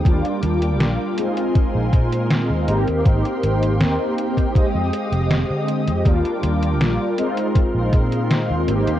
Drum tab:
HH |xxxxx-xxx-xxx-xx|xxxxx-xxx-xxx-xx|xxxxx-xxx-xxx-xx|
SD |----o-------o---|----o-------o---|----o-------o---|
BD |o-------o-o-----|o------oo-------|o-------o-o-----|